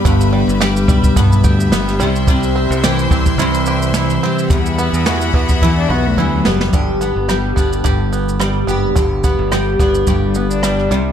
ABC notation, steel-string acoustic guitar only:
X:1
M:4/4
L:1/8
Q:"Swing 16ths" 1/4=108
K:G
V:1 name="Steel-string acoustic guitar" clef=bass
[G,,G,B,]2 G,2 G,,2 G, C, | C,2 E,2 C,2 E, G, | E,,2 E,2 E,,2 E, G, | [G,,G] B, G, D G,,2 G, G |
[G,,G] B, G, D G,,2 G, C, |]